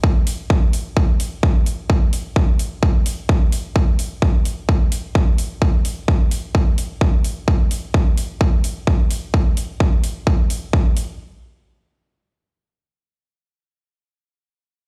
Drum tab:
HH |-o-o-o-o|-o-o-o-o|-o-o-o-o|-o-o-o-o|
BD |o-o-o-o-|o-o-o-o-|o-o-o-o-|o-o-o-o-|

HH |-o-o-o-o|-o-o-o-o|--------|--------|
BD |o-o-o-o-|o-o-o-o-|--------|--------|